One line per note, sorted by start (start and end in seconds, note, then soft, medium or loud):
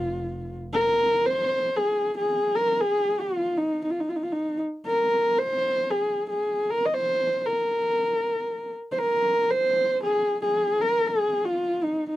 0.00 0.78 F1 medium
0.00 0.56 F4 medium
0.74 1.27 A#4 loud
1.26 1.78 C5 loud
1.77 2.15 G#4 loud
2.17 2.57 G#4 medium
2.55 2.82 A#4 loud
2.80 3.21 G#4 loud
3.20 3.59 F4 medium
3.57 3.83 D#4 medium
3.84 3.92 D#4 medium
3.91 4.01 F4 medium
4.00 4.10 D#4 medium
4.09 4.17 F4 medium
4.16 4.25 D#4 medium
4.23 4.34 F4 medium
4.32 4.61 D#4 medium
4.87 5.40 A#4 loud
5.39 5.92 C5 loud
5.90 6.28 G#4 loud
6.30 6.71 G#4 medium
6.70 6.87 A#4 loud
6.86 6.95 D#5 medium
6.94 7.47 C5 loud
7.45 8.73 A#4 medium
8.92 9.00 C5 medium
8.98 9.52 A#4 loud
9.51 10.02 C5 loud
10.03 10.38 G#4 loud
10.42 10.83 G#4 loud
10.81 11.08 A#4 loud
11.07 11.46 G#4 loud
11.45 11.85 F4 medium
11.83 12.08 D#4 medium
12.10 12.16 D#4 medium